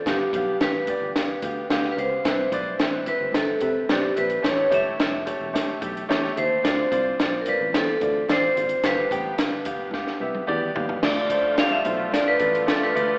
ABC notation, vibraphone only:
X:1
M:4/4
L:1/16
Q:1/4=109
K:Ddor
V:1 name="Vibraphone"
G4 B6 z3 z/2 B/2 c2- | c6 B2 A4 G2 B2 | ^c2 e12 =c2- | c4 z3/2 _B/2 =B2 A4 c4 |
B12 z4 | d4 f e3 d B3 A B3 |]